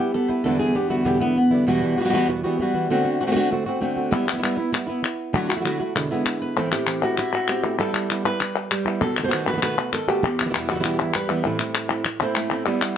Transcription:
Already playing: nylon-string guitar G3 B3
0.00 nylon-string guitar B3 E4 G4
0.14 nylon-string guitar B3 A4, muted nylon-string guitar stroke
0.28 nylon-string guitar B3 E4 B4
0.44 nylon-string guitar E2 B2 D3 G3 B3 D4 E4 A4
0.59 nylon-string guitar D3 G3 B3 E4 G#4
0.75 nylon-string guitar B3 G4, muted nylon-string guitar stroke
0.90 nylon-string guitar D3 G3 B3 E4 F#4
1.05 nylon-string guitar E2 B2 D3 G3 B3 E4 G4
1.20 nylon-string guitar D3 G3 B3 E4
1.35 nylon-string guitar B3, muted nylon-string guitar stroke
1.51 nylon-string guitar D3 G3 B3 E4 D5
1.67 nylon-string guitar E2 B2 E3 G3 B3 F#4
1.82 nylon-string guitar E3 G3 B3 F#4
1.97 nylon-string guitar B2 E3 G3 B3 F#4, muted nylon-string guitar stroke
2.05 nylon-string guitar B2 E3 G3 B3 F#4
2.09 nylon-string guitar B2 E3 G3 B3 F#4
2.13 nylon-string guitar E2 B2 E3 G3 B3 F#4
2.28 nylon-string guitar E2 B2 E3 G3 B3 F#4, muted nylon-string guitar stroke
2.43 nylon-string guitar E3 G3 B3 F#4
2.59 nylon-string guitar E3 G3 B3 F#4, muted nylon-string guitar stroke
2.74 nylon-string guitar E3 G3 B3 F#4
2.90 nylon-string guitar D3 A3 C4 F#4
3.05 nylon-string guitar A3 C4 F#4
3.21 nylon-string guitar D3 A3 C4 F#4, muted nylon-string guitar stroke
3.27 nylon-string guitar D3 A3 C4 F#4
3.31 nylon-string guitar D3 A3 C4 F#4
3.35 nylon-string guitar D3 A3 C4 F#4
3.51 nylon-string guitar D3 A3 C4 F#4, muted nylon-string guitar stroke
3.66 nylon-string guitar A3 C4 F#4
3.81 nylon-string guitar D3 A3 C4 F#4, muted nylon-string guitar stroke
3.97 nylon-string guitar A3 C4 F#4
4.11 nylon-string guitar G3 B3 E4, muted nylon-string guitar stroke
4.26 nylon-string guitar B3 E4, clap
4.34 nylon-string guitar G3 B3 E4
4.38 nylon-string guitar G3 B3 E4
4.42 nylon-string guitar G3 B3 E4, clap
4.57 nylon-string guitar B3 E4
4.72 nylon-string guitar G3 B3 E4, muted nylon-string guitar stroke, clap
4.87 nylon-string guitar B3 E4
5.03 muted nylon-string guitar stroke, clap
5.33 nylon-string guitar D3 F#3 A3 E4 F#4, muted nylon-string guitar stroke
5.49 nylon-string guitar F#3 A3 E4 F#4, clap
5.53 nylon-string guitar F#3 A3 F#4
5.57 nylon-string guitar F#3 E4 F#4
5.61 nylon-string guitar F#3 A3 E4 F#4
5.65 nylon-string guitar D3 F#3 A3 E4 F#4, clap
5.79 nylon-string guitar A3 E4 F#4
5.95 nylon-string guitar E2 B2 D3 G#3 B3 E4, muted nylon-string guitar stroke, clap
6.10 nylon-string guitar D3 G#3 B3 E4
6.26 muted nylon-string guitar stroke, clap
6.42 nylon-string guitar B4
6.56 nylon-string guitar A2 E3 A3 C4 E4 A4
6.72 nylon-string guitar A3 C4 E4 G4, clap
6.87 nylon-string guitar E3 A3 C4 E4, clap
7.02 nylon-string guitar A3 C4 E4 F#4
7.18 nylon-string guitar E4, muted nylon-string guitar stroke, clap
7.33 nylon-string guitar F#4
7.48 nylon-string guitar C4 G4, clap
7.64 nylon-string guitar A3 C4 E4
7.78 nylon-string guitar G3 B3 E4 A4
7.94 nylon-string guitar B3 E4, clap
8.10 nylon-string guitar G3 B3 E4, clap
8.25 nylon-string guitar B3 E4 B4
8.41 muted nylon-string guitar stroke, clap
8.71 nylon-string guitar G3, clap
8.85 nylon-string guitar B3 E4
9.01 nylon-string guitar B2 A4, muted nylon-string guitar stroke
9.17 nylon-string guitar D#3 A3 B3 F#4, clap
9.23 nylon-string guitar D#3 A3 B3 F#4 C5
9.27 nylon-string guitar D#3 A3 B3 F#4
9.32 nylon-string guitar B2 D#3 A3 B3 F#4, clap
9.47 nylon-string guitar D#3 A3 B3 F#4 B4, clap
9.53 nylon-string guitar D#3 A3 B3 F#4
9.57 nylon-string guitar D#3 A3 B3 F#4
9.62 nylon-string guitar B2 D#3 A3 B3 F#4 B4, clap
9.78 nylon-string guitar A3 B3 F#4
9.93 nylon-string guitar D#3 A4, muted nylon-string guitar stroke, clap
10.08 nylon-string guitar A3 B3 F#4 G4
10.23 nylon-string guitar E2, muted nylon-string guitar stroke
10.39 nylon-string guitar B2 E3 G3 B3 E4, clap
10.45 nylon-string guitar B2 E3 G3 B3 E4
10.49 nylon-string guitar B2 E3 G3 B3 E4
10.54 nylon-string guitar E2 B2 E3 G3 B3 E4, clap
10.69 nylon-string guitar B2 E3 G3 B3 E4 F#4
10.75 nylon-string guitar B2 E3 G3 B3 E4
10.80 nylon-string guitar B2 E3 G3 B3 E4
10.84 nylon-string guitar E2 B2 E3 G3 B3 E4 G4, clap
10.99 nylon-string guitar E3 G3 B3 E4, clap
11.14 nylon-string guitar G3 B4, muted nylon-string guitar stroke, clap
11.30 nylon-string guitar E3 G3 B3 E4
11.44 nylon-string guitar A2 E3 A3 C4 E4
11.60 nylon-string guitar A3 C4 E4, clap
11.74 clap
11.91 nylon-string guitar A3 C4 E4
12.05 muted nylon-string guitar stroke, clap
12.21 nylon-string guitar A3 C4 E4 C5
12.35 nylon-string guitar A3, clap
12.51 nylon-string guitar A3 C4 E4
12.66 nylon-string guitar G3 B3 E4
12.81 nylon-string guitar B3 E4, clap

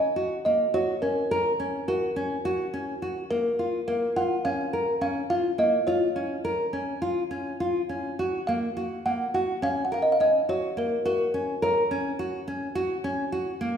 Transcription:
Already playing: kalimba D#5
0.16 nylon-string guitar F#4
0.45 nylon-string guitar A#3, kalimba D#5
0.74 nylon-string guitar F#4, kalimba C#5
1.02 nylon-string guitar C#4, kalimba A#4
1.31 nylon-string guitar A#4
1.60 nylon-string guitar C#4
1.88 nylon-string guitar F#4, kalimba A#4
2.16 nylon-string guitar C#4
2.45 nylon-string guitar F#4
2.74 nylon-string guitar C#4
3.02 nylon-string guitar F#4
3.31 nylon-string guitar A#3, kalimba A#4
3.59 nylon-string guitar F4
3.88 nylon-string guitar A#3, kalimba A#4
4.16 nylon-string guitar F4, kalimba F#5
4.45 nylon-string guitar C#4, kalimba F5
4.73 nylon-string guitar A#4
5.01 nylon-string guitar C#4, kalimba F5
5.30 nylon-string guitar F4, kalimba F5
5.58 nylon-string guitar A#3, kalimba D#5
5.87 nylon-string guitar F4, kalimba C#5
6.16 nylon-string guitar C#4
6.45 nylon-string guitar A#4
6.73 nylon-string guitar C#4
7.02 nylon-string guitar F4
7.31 nylon-string guitar C#4
7.60 nylon-string guitar F4
7.89 nylon-string guitar C#4
8.19 nylon-string guitar F#4
8.47 nylon-string guitar A#3, kalimba F5
8.77 nylon-string guitar F#4
9.06 nylon-string guitar A#3, kalimba F#5
9.34 nylon-string guitar F#4, kalimba F#5
9.62 nylon-string guitar C#4, kalimba F5
9.85 kalimba F#5
9.92 nylon-string guitar A#4, kalimba F5
10.02 kalimba D#5
10.12 kalimba F5
10.20 nylon-string guitar C#4, kalimba D#5
10.49 nylon-string guitar F#4, kalimba C#5
10.77 nylon-string guitar A#3, kalimba A#4
11.05 nylon-string guitar F#4, kalimba A#4
11.34 nylon-string guitar C#4
11.62 nylon-string guitar A#4, kalimba C#5
11.91 nylon-string guitar C#4
12.19 nylon-string guitar F#4
12.48 nylon-string guitar C#4
12.75 nylon-string guitar F#4
13.04 nylon-string guitar C#4
13.32 nylon-string guitar F#4
13.61 nylon-string guitar A#3

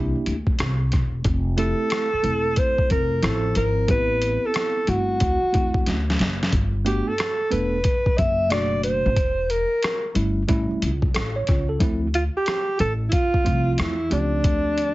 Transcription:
Already playing: upright bass C2, tine electric piano A#3 D4 E4 G4
0.15 muted upright bass stroke
0.26 upright bass D2, closed hi-hat
0.47 kick
0.59 upright bass C2, cross-stick, closed hi-hat
0.92 upright bass E1, kick, cross-stick, closed hi-hat
1.24 upright bass F1, kick, closed hi-hat
1.57 tine electric piano A3 C4 E4 G4, alto saxophone A4, closed hi-hat
1.90 cross-stick, closed hi-hat
2.13 muted upright bass stroke
2.23 upright bass E1, tine electric piano A3 C4 E4 A4, closed hi-hat
2.56 alto saxophone C5, kick, closed hi-hat
2.78 muted upright bass stroke, kick
2.90 upright bass F1, alto saxophone A#4, kick, closed hi-hat
3.22 upright bass A1, tine electric piano F3 C4 E4 C5, alto saxophone A4, cross-stick, closed hi-hat
3.55 upright bass G#1, alto saxophone A#4, closed hi-hat
3.88 upright bass A1, tine electric piano B3 C4 E4 G4, alto saxophone B4, kick, closed hi-hat
4.22 closed hi-hat
4.46 alto saxophone A4
4.54 cross-stick, closed hi-hat
4.87 upright bass G1, tine electric piano A3 C4 E4 F#4, alto saxophone F#4, closed hi-hat
5.20 upright bass D2, kick, closed hi-hat
5.43 muted upright bass stroke
5.52 upright bass E2, tine electric piano A3 C4 E4 F#4, kick, closed hi-hat
5.74 kick
5.86 upright bass D2, snare, closed hi-hat
6.10 snare
6.19 upright bass F#1, snare, closed hi-hat
6.43 snare
6.52 upright bass G1, kick, closed hi-hat
6.85 tine electric piano A3 B3 D4 F#4, alto saxophone G4, closed hi-hat
7.08 alto saxophone A4
7.18 cross-stick, closed hi-hat
7.50 upright bass E1, tine electric piano A3 B3 D4 A4, alto saxophone B4, closed hi-hat
7.84 kick, closed hi-hat
8.06 muted upright bass stroke, kick
8.18 upright bass F#1, alto saxophone E5, kick, closed hi-hat
8.50 tine electric piano B2 A3 D4 F#4, alto saxophone D5, cross-stick, closed hi-hat
8.83 alto saxophone C5, closed hi-hat
9.06 upright bass A1
9.16 upright bass E1, kick, closed hi-hat
9.50 alto saxophone A#4, closed hi-hat
9.83 cross-stick, closed hi-hat
10.15 upright bass G1, tine electric piano G3 A3 C#4 E4, closed hi-hat
10.48 upright bass A1, tine electric piano G3 A3 C#4 E4, kick, closed hi-hat
10.71 muted upright bass stroke
10.82 upright bass C#2, closed hi-hat
11.02 kick
11.14 upright bass A1, tine electric piano A4, cross-stick, closed hi-hat
11.36 tine electric piano C#5
11.47 upright bass C#2, kick, cross-stick, closed hi-hat
11.69 tine electric piano A4
11.79 upright bass D2, tine electric piano F3 A3 C4 E4, kick, closed hi-hat
12.14 alto saxophone F4, closed hi-hat
12.37 alto saxophone G4
12.46 cross-stick, closed hi-hat
12.79 upright bass A1, alto saxophone A4, closed hi-hat
13.09 alto saxophone E4 F4, kick, closed hi-hat
13.34 muted upright bass stroke, kick
13.44 upright bass C2, tine electric piano F3 A3 C4 F4, kick, closed hi-hat
13.74 alto saxophone F4, closed hi-hat
13.79 upright bass E2, alto saxophone E4, cross-stick
14.10 upright bass C#2, tine electric piano F3 A3 C4 G4, alto saxophone D4, closed hi-hat
14.44 upright bass D2, kick, closed hi-hat
14.78 closed hi-hat

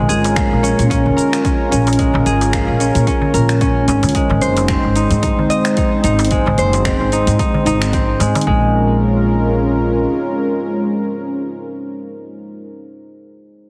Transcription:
Already playing: harp G#3 C4 D#4, analog synth pad G#3 C#4 F4 A#4
0.09 upright bass G#1, harp G#4, open hi-hat, shaker
0.24 open hi-hat, darbuka ka, darbuka tek, shaker
0.36 harp A#3, finger snap, kick, open hi-hat, shaker
0.51 upright bass A#1, darbuka ka
0.63 harp C#4, open hi-hat, shaker
0.79 upright bass A#2, open hi-hat, shaker
0.90 harp C#4, kick, open hi-hat, shaker
1.06 upright bass F1, darbuka dum
1.17 harp A#4, open hi-hat, shaker
1.33 finger snap, open hi-hat, darbuka ka, shaker
1.44 harp C#4, kick, open hi-hat, shaker
1.71 upright bass A#1, harp C#4, open hi-hat, shaker
1.87 open hi-hat, darbuka ka, darbuka tek, shaker
1.93 open hi-hat
1.99 harp G#3, kick, open hi-hat, shaker
2.14 upright bass A#1, darbuka tek, darbuka dum
2.26 upright bass G#1, harp G#4, open hi-hat, shaker
2.41 open hi-hat, darbuka ka, darbuka tek, shaker
2.53 harp A#3, finger snap, kick, open hi-hat, shaker
2.67 upright bass A#1, darbuka ka
2.80 harp C#4, open hi-hat, shaker
2.95 upright bass A#2, open hi-hat, shaker
3.07 harp C#4, kick, open hi-hat, shaker
3.22 darbuka dum
3.34 upright bass A#1, harp A#4, open hi-hat, shaker
3.49 finger snap, open hi-hat, shaker
3.61 harp C#4, kick, open hi-hat, shaker
3.88 upright bass G#1, harp C#4, open hi-hat, darbuka ka, darbuka tek, shaker
4.03 upright bass C#2, open hi-hat, darbuka tek, darbuka dum, shaker
4.09 open hi-hat
4.14 analog synth pad G#3 C4 D#4 C5, harp G#3, kick, open hi-hat, shaker
4.29 upright bass G#1, darbuka tek, darbuka dum
4.42 upright bass F#1, harp C5, open hi-hat, shaker
4.57 open hi-hat, darbuka ka, darbuka tek, shaker
4.68 harp C4, finger snap, kick, open hi-hat, shaker
4.84 upright bass G#1, darbuka ka
4.96 harp D#4, open hi-hat, shaker
5.11 upright bass G#2, open hi-hat, shaker
5.22 harp D#4, kick, open hi-hat, shaker
5.38 upright bass D#2, darbuka dum
5.50 harp D#5, open hi-hat, shaker
5.65 finger snap, open hi-hat, darbuka ka, shaker
5.77 harp D#4, kick, open hi-hat, shaker
6.04 upright bass G#1, harp D#4, open hi-hat, shaker
6.19 open hi-hat, darbuka ka, darbuka tek, shaker
6.25 open hi-hat
6.31 harp G#3, kick, open hi-hat, shaker
6.46 upright bass G#1, darbuka tek, darbuka dum
6.58 upright bass F#1, harp C5, open hi-hat, shaker
6.73 open hi-hat, darbuka ka, darbuka tek, shaker
6.85 harp C4, finger snap, kick, open hi-hat, shaker
7.00 upright bass G#1, darbuka ka
7.12 harp D#4, open hi-hat, shaker
7.27 upright bass G#2, open hi-hat, shaker
7.39 harp D#4, kick, open hi-hat, shaker
7.54 darbuka dum
7.65 upright bass G#1, harp D#4, open hi-hat, shaker
7.82 finger snap, open hi-hat, shaker
7.93 harp C4, kick, open hi-hat, shaker
8.20 upright bass G#2, harp G#3, open hi-hat, darbuka ka, darbuka tek, shaker
8.35 open hi-hat, darbuka tek, darbuka dum, shaker
8.41 open hi-hat
8.47 upright bass A#1, harp G#3, analog synth pad G#3 C#4 F4 A#4, kick

